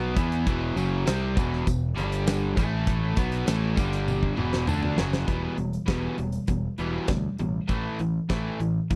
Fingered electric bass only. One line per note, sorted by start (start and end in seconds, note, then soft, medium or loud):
0.00 0.15 B1 medium
0.17 0.44 E2 medium
0.47 0.74 E1 medium
0.76 1.04 F#1 medium
1.08 1.35 C2 medium
1.37 1.65 E1 medium
1.67 1.95 E1 medium
1.98 2.53 G1 medium
2.57 3.13 A1 medium
3.17 3.45 B1 medium
3.48 3.75 A1 medium
3.78 4.34 G1 medium
4.38 4.66 E1 medium
4.68 4.96 D2 medium
4.99 5.26 F#1 medium
5.28 5.46 E1 medium
5.58 5.77 E1 medium
5.88 6.07 E1 medium
6.19 6.37 E1 medium
6.49 6.67 E1 medium
6.79 6.97 E1 medium
7.09 7.27 D2 medium
7.40 7.58 A1 medium
7.69 7.88 A1 medium
8.00 8.18 A1 medium
8.30 8.49 A1 medium
8.60 8.79 A1 medium
8.91 8.96 A1 medium